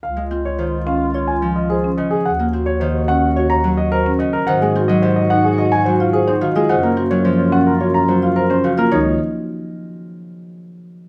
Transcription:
<<
  \new Staff \with { instrumentName = "Grand piano" } { \time 4/4 \key des \major \tempo 4 = 108 f''16 r8 des''16 c''16 r16 f''16 r16 des''16 aes''16 r16 ees''16 aes'16 r16 ees''16 aes'16 | ges''16 r8 des''16 c''16 r16 ges''16 r16 des''16 bes''16 r16 ees''16 bes'16 r16 ees''16 bes'16 | ges''16 aes'16 r16 ees''16 c''16 ees''16 ges''16 aes'16 ees''16 aes''16 c''16 f''16 aes'16 c''16 f''16 aes'16 | ges''16 bes'16 r16 des''16 c''16 des''16 ges''16 bes'16 des''16 bes''16 c''16 f''16 bes'16 c''16 f''16 bes'16 |
des''8 r2. r8 | }
  \new Staff \with { instrumentName = "Marimba" } { \time 4/4 \key des \major r8 f'16 r8. des'16 r16 f'16 r8. c''16 des'16 r8 | r8 ges'16 r8. des'16 r16 ges'16 r8. c''16 des'16 r8 | c''16 r16 ges'16 r8. ees'16 r16 ges'16 r16 ges'16 f'16 c''16 ees'16 ges'16 f'16 | c''16 r16 ges'16 r8. des'16 r16 ges'16 r16 ges'16 f'16 c''16 des'16 ges'16 f'16 |
ees'8 r2. r8 | }
  \new Staff \with { instrumentName = "Soprano saxophone" } { \time 4/4 \key des \major f'2.~ f'8. r16 | ges'2.~ ges'8. r16 | ges'2.~ ges'8. r16 | f'2.~ f'8. r16 |
r1 | }
  \new Staff \with { instrumentName = "Harp" } { \clef bass \time 4/4 \key des \major r16 aes16 c'8 ees4. f4 des8 | r16 bes16 c'8 ees4. ges4 des8 | ees16 aes16 c'16 ges16 c4. ges8. c'16 ees16 aes16 | des16 bes16 c'16 ges16 f4. ges8. c'16 des16 bes16 |
ees8 r2. r8 | }
  \new Staff \with { instrumentName = "Bass clarinet" } { \clef bass \time 4/4 \key des \major des,1 | ees,1 | aes,1 | ges,1 |
des,8 r2. r8 | }
>>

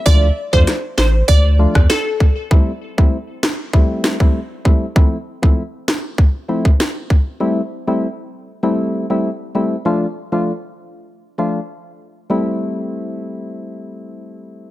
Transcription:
<<
  \new Staff \with { instrumentName = "Synth pluck" } { \time 4/4 \key a \minor \tempo 4 = 98 d''16 r8 c''16 r8 c''16 r16 d''8. r16 a'8. r16 | r1 | r1 | r1 |
r1 | r1 | }
  \new Staff \with { instrumentName = "Synth stab" } { \time 4/4 \key a \minor <f a d' f'>16 r8 <f a d' f'>16 r4. <f a d' f'>16 r4 r16 | <g a c' e'>16 r8 <g a c' e'>16 r4 <g a c' e'>8. <g a c' e'>16 r8 <g a c' e'>16 r16 | <f a c' e'>16 r8 <f a c' e'>16 r4. <f a c' e'>16 r4 r16 | <g a c' e'>16 r8 <g a c' e'>16 r4 <g a c' e'>8. <g a c' e'>16 r8 <g a c' e'>16 r16 |
<f a d' f'>16 r8 <f a d' f'>16 r4. <f a d' f'>16 r4 r16 | <g a c' e'>1 | }
  \new Staff \with { instrumentName = "Sub bass" } { \clef bass \time 4/4 \key a \minor d,8 r16 f,16 r8 a,,8 d,8. e,16 r4 | r1 | r1 | r1 |
r1 | r1 | }
  \new DrumStaff \with { instrumentName = "Drums" } \drummode { \time 4/4 <hh bd>8. bd16 <hh sn>8 sn8 <hh bd>8. <bd ss>16 <hh sn>8 bd8 | bd8. bd16 r8 sn8 bd8 sn16 bd16 r8 bd8 | bd8. bd16 r8 sn8 bd8. bd16 sn8 bd8 | r4 r4 r4 r4 |
r4 r4 r4 r4 | r4 r4 r4 r4 | }
>>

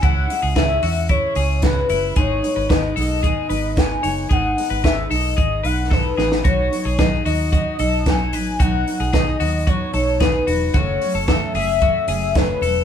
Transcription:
<<
  \new Staff \with { instrumentName = "Soft synth lead" } { \time 4/4 \key b \mixolydian \tempo 4 = 112 fis''4 e''4 cis''4 b'4 | cis''4 dis''8 dis''4. gis''4 | fis''4 e''8 dis''8 dis''8 fis''8 b'4 | cis''4 dis''8 dis''4. gis''4 |
fis''4 dis''4 cis''4 b'4 | cis''4 e''8 e''4. b'4 | }
  \new Staff \with { instrumentName = "Clean electric guitar" } { \time 4/4 \key b \mixolydian e'8. gis'16 gis'8 fis'8 e'8 gis'8 fis'8 e'8 | gis'8. b'16 b'8 a'8 gis'8 b'4 cis''8 | gis'8. b'16 b'8 a'8 gis'8 b'8 a'8 gis'8 | fis'8. gis'16 gis'8 fis'8 fis'8 a'4 b'8 |
fis'8. gis'16 gis'8 fis'8 fis'8 a'8 gis'8 fis'8 | fis'8. a'16 a'8 gis'8 fis'8 gis'4 a'8 | }
  \new Staff \with { instrumentName = "Steel-string acoustic guitar" } { \time 4/4 \key b \mixolydian <cis gis cis' e'>8 <gis cis' e'>8 <cis gis cis' e'>8 <gis cis' e'>8 <cis gis cis' e'>8 <gis cis' e'>8 <cis gis cis' e'>8 <gis cis' e'>8 | <gis, dis gis b dis'>8 <gis b dis'>8 <gis, dis gis b dis'>8 <gis b dis'>8 <dis gis b dis'>8 <gis b dis'>8 <gis, dis gis b dis'>8 <gis b dis'>8 | <gis, dis gis b dis'>8 <gis b dis'>8 <gis, dis gis b dis'>8 <gis b dis'>8 <dis gis b dis'>8 <gis b dis'>8 <gis, dis gis b dis'>8 <gis b dis'>8 | <b, fis b dis'>8 <fis b dis'>8 <b, fis b dis'>8 <fis b dis'>8 <b, fis b dis'>8 <fis b dis'>8 <b, fis b dis'>8 <fis b dis'>8 |
<b, fis b dis'>8 <fis b dis'>8 <b, fis b dis'>8 <fis b dis'>8 <b, fis b dis'>8 <fis b dis'>8 <b, fis b dis'>8 <fis b dis'>8 | <fis, cis fis a cis'>8 <fis a cis'>8 <fis, cis fis a cis'>8 <fis a cis'>8 <cis fis a cis'>8 <fis a cis'>8 <fis, cis fis a cis'>8 <fis a cis'>8 | }
  \new Staff \with { instrumentName = "Fingered electric bass" } { \clef bass \time 4/4 \key b \mixolydian cis,8 r16 cis,8. e,8. r16 cis,4 fis,,8 | gis,,8 r16 gis,,8. b,,8. r16 gis,,4 fis,,8 | gis,,8 r16 gis,,8. b,,8 gis,,8 b,,4 a,,8 | b,,8 r16 b,,8. dis,8. r16 b,,4 a,,8 |
b,,8 r16 b,,8. dis,8. r16 b,,4 e,,8 | fis,,8 r16 fis,,8 r16 fis,,8. r16 fis,,4 e,,8 | }
  \new DrumStaff \with { instrumentName = "Drums" } \drummode { \time 4/4 <hh bd>8 hho8 <hh bd sn>8 hho8 <hh bd>8 hho8 <hh bd sn>8 hho8 | <hh bd>8 hho8 <hh bd sn>8 hho8 <hh bd>8 hho8 <hh bd sn>8 hho8 | <hh bd>8 hho8 <hh bd sn>8 hho8 <hh bd>8 hho8 <bd sn>8 sn16 sn16 | <hh bd>8 hho8 <hh bd sn>8 hho8 <hh bd>8 hho8 <hh bd sn>8 hho8 |
<hh bd>8 hho8 <hh bd sn>8 hho8 <hh bd>8 hho8 <hh bd sn>8 hho8 | <hh bd>8 hho8 <hh bd sn>8 hho8 <hh bd>8 hho8 <hh bd sn>8 hho8 | }
>>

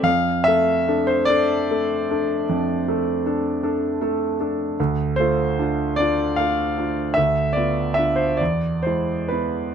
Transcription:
\new Staff \with { instrumentName = "Grand piano" } { \time 12/8 \key d \dorian \tempo 4. = 50 << { f''8 e''8. c''16 d''1~ d''8 | r8 c''4 d''8 f''4 e''8 d''8 e''16 c''16 d''8 c''8 b'8 | } \\ { f,8 <a a'>8 <d' a'>8 <d' a'>8 <a a'>8 <d' a'>8 f,8 <a a'>8 <d' a'>8 <d' a'>8 <a a'>8 <d' a'>8 | d,8 <a f'>8 <d' f'>8 <d' f'>8 <a f'>8 <d' f'>8 d,8 <b f'>8 <d' f'>8 e,8 <gis e'>8 <b e'>8 | } >> }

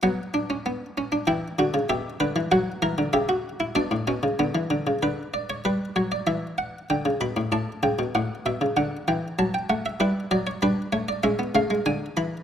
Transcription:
<<
  \new Staff \with { instrumentName = "Harpsichord" } { \time 4/4 \key b \minor \tempo 4 = 96 << { fis''2 g''4 e''4 | fis''4 e''4 d''2 | b'8 d''16 cis''16 b'8 cis''16 d''16 e''8 fis''8 g''8 b''8 | a''8 g''8 fis''8 e''8 fis''8 g''8 a''16 g''16 fis''16 e''16 |
\key g \lydian b'8 d''16 cis''16 b'8 cis''16 d''16 e''8 eis''8 gis''8 b''8 | } \\ { b8 d'16 cis'16 b8 cis'16 d'16 e'8 fis'8 g'8 b'8 | fis'8 ais'8 g'16 fis'8 e'16 d'8 cis'8 b4 | r1 | r1 |
e'4 d'4 cis'16 b16 a16 gis4~ gis16 | } >> }
  \new Staff \with { instrumentName = "Harpsichord" } { \clef bass \time 4/4 \key b \minor fis2 e8 d16 cis16 b,8 d16 e16 | fis8 e16 d16 cis4 b,16 a,16 b,16 cis16 d16 e16 d16 cis16 | d4 g8 fis8 e4 d16 cis16 b,16 a,16 | a,8 cis16 b,16 a,8 b,16 cis16 d8 e8 fis8 a8 |
\key g \lydian g8 fis8 g8 a8 gis8 cis8 d8 e8 | }
>>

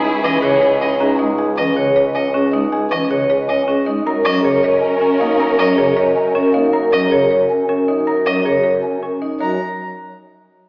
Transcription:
<<
  \new Staff \with { instrumentName = "Violin" } { \time 7/8 \key fis \mixolydian \tempo 4 = 157 r8 dis''8 r4 dis''8 r4 | r8 dis''8 r4 dis''8 r4 | r8 dis''8 r4 dis''8 r4 | r8 dis''8 r2 r8 |
r8 dis''8 r2 r8 | r8 dis''8 r2 r8 | r8 dis''8 r2 r8 | ais''8 r2. | }
  \new Staff \with { instrumentName = "Marimba" } { \time 7/8 \key fis \mixolydian gis''8 r8 gis'8 cis''8 r8 gis'8 dis''8 | gis''8 r8 gis'8 cis''8 r8 gis'8 dis''8 | gis''8 r8 gis'8 cis''8 r8 gis'8 dis''8 | ais''8 r8 ais'8 cis''8 r8 ais'8 dis''8 |
ais''8 r8 ais'8 cis''8 r8 ais'8 dis''8 | ais''8 r8 ais'8 cis''8 r8 ais'8 dis''8 | ais''8 r8 ais'8 cis''8 r8 ais'8 dis''8 | dis''8 r2. | }
  \new Staff \with { instrumentName = "Vibraphone" } { \time 7/8 \key fis \mixolydian gis'8 cis'8 cis''8 dis''8 cis''8 cis'8 dis'8 | gis'8 cis'8 cis''8 dis''8 cis''8 cis'8 dis'8 | gis'8 cis'8 cis''8 dis''8 cis''8 cis'8 dis'8 | ais'8 cis'8 cis''8 dis''8 r8 cis'8 dis'8 |
ais'8 cis'8 cis''8 dis''8 r8 cis'8 dis'8 | ais'8 cis'8 cis''8 r4 cis'8 dis'8 | ais'8 cis'8 cis''8 r4 cis'8 dis'8 | fis'8 r2. | }
  \new Staff \with { instrumentName = "Violin section" } { \time 7/8 \key fis \mixolydian <e' gis'>2. r8 | r2. r8 | r2. r8 | <cis' ais'>2.~ <cis' ais'>8~ |
<cis' ais'>2. r8 | r2. r8 | r2. r8 | r2. r8 | }
  \new Staff \with { instrumentName = "Pipe organ" } { \clef bass \time 7/8 \key fis \mixolydian r8 e8 cis8 r8 cis'8 dis'8 gis8 | r8 e8 cis8 r8 cis'8 r8 gis8 | r8 e8 cis8 r8 cis'8 r8 gis8 | r8 fis8 cis8 r8 cis'8 r8 ais8 |
r8 fis8 cis8 r8 cis'8 r8 ais8 | r8 fis8 cis8 r8 cis'8 r4 | r8 fis8 cis8 r8 cis'8 r4 | fis8 r2. | }
  \new Staff \with { instrumentName = "Bassoon" } { \clef bass \time 7/8 \key fis \mixolydian cis,2.~ cis,8~ | cis,2.~ cis,8~ | cis,2.~ cis,8 | fis,2.~ fis,8~ |
fis,2.~ fis,8~ | fis,2.~ fis,8~ | fis,2.~ fis,8 | fis,8 r2. | }
>>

